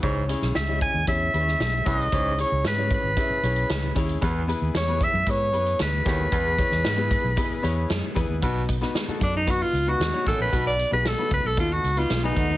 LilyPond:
<<
  \new Staff \with { instrumentName = "Alto saxophone" } { \time 4/4 \key b \mixolydian \tempo 4 = 114 r4 e''8 gis''8 e''4. dis''8~ | dis''8 cis''8 b'8 b'2 r8 | r4 cis''8 e''8 cis''4 b'8 b'8~ | b'2. r4 |
r4. d'16 dis'16 fis'16 eis'8 fis'8. a'16 b'16~ | b'16 d''8 b'16 a'8 b'16 a'16 eis'16 fis'8 eis'8 dis'8. | }
  \new Staff \with { instrumentName = "Upright piano" } { \time 4/4 \key b \mixolydian <cis' e' gis' cis''>8 <cis' e' gis' cis''>8 r16 <cis' e' gis' dis''>8 r16 <cis' e' gis' cis''>8 <cis' e' gis' b' cis''>8. r16 <cis' e' gis' cis''>8 | <cis' e' gis' cis''>8 <cis' e' gis' cis''>8 r16 <cis' e' gis' cis''>8 r16 <cis' e' gis' e''>8 <cis' e' gis' cis''>8. r16 <cis' e' gis' cis''>8 | <b e' gis' b'>8 <b e' gis' b'>8 r16 <b e' gis' b'>8 r16 <b e' gis' b'>8 <b e' gis' b'>8. r16 <b e' gis' cis''>8 | <b e' gis' b'>8 <b e' gis' cis''>8 r16 <b e' gis' b'>8 r16 <b e' gis' b'>8 <b e' gis' cis''>8. r16 <b e' gis' b'>8 |
<b dis' fis' b'>8 r16 <b dis' fis' b'>8 <b dis' fis' a'>8 r16 <b dis' fis' b'>8 r16 <b dis' fis' b'>8 <b dis' fis' cis''>8 r16 | <b dis' fis' b'>8 r16 <b dis' fis' gis'>8 <b dis' fis' b'>8 r16 <b dis' fis' a'>8 r16 <b dis' fis' b'>8 <b dis' fis' b'>8 r16 | }
  \new Staff \with { instrumentName = "Upright piano" } { \clef bass \time 4/4 \key b \mixolydian cis4. r2 r8 | cis4. r2 r8 | e4. r2 r8 | e4. r2 r8 |
b,4. r2 r8 | b,4. r2 r8 | }
  \new Staff \with { instrumentName = "Clean electric guitar" } { \time 4/4 \key b \mixolydian r1 | r1 | r1 | r1 |
r1 | r2. r16 <b gis'>16 <a fis'>16 <fis dis'>16 | }
  \new Staff \with { instrumentName = "Baritone saxophone" } { \clef bass \time 4/4 \key b \mixolydian gis,8 r2. e,8 | gis,8 r2. r8 | e,8 r2. dis,8 | e,8 r2. r8 |
b,8 r2. fis,8 | b,8 r2. r8 | }
  \new Staff \with { instrumentName = "Fingered electric bass" } { \clef bass \time 4/4 \key b \mixolydian cis,8. b,,16 cis,8. dis,16 e,8 dis,8 b,,8 c,8 | cis,8. cis,16 gis,8. gis,,16 r8 b,,8 cis,8 dis,8 | e,8. dis,16 e,8. fis,16 gis,8 fis,8 d,8 dis,8 | e,8. e,16 gis,8. b,,16 r8 e,8 fis,16 r16 e,16 dis,16 |
b,,4 r8 fis,4 cis,8 dis,16 r16 a,,16 ais,,16 | b,,8. b,,8 r16 cis,16 b,,16 dis,8 cis,8 b,,8 dis,8 | }
  \new DrumStaff \with { instrumentName = "Drums" } \drummode { \time 4/4 <hh bd>8 hh16 sn16 <hh sn>8 <hh bd>8 <hh bd>8 hh16 sn16 <hh sn>8 <hh bd>16 hh16 | <hh bd>8 hh8 <hh sn>8 <hh bd>8 <hh bd>8 hh16 hh16 <hh sn>8 <hh bd>16 hh16 | <hh bd>8 hh8 <hh sn>8 <hh bd>8 <hh bd>8 hh16 hh16 <hh sn>8 <hh bd sn>8 | <hh bd>8 <hh bd>16 sn16 <hh sn>8 <hh bd>8 <hh bd>8 hh8 <hh sn>8 <hh bd>8 |
<hh bd>8 <hh bd>16 sn16 <hh sn>8 <hh bd>8 <hh bd>8 hh8 <hh sn>8 <hho bd sn>8 | <hh bd>8 hh8 <hh sn>8 <hh bd>8 <hh bd>8 hh16 hh16 <hh sn>8 <hh bd>8 | }
>>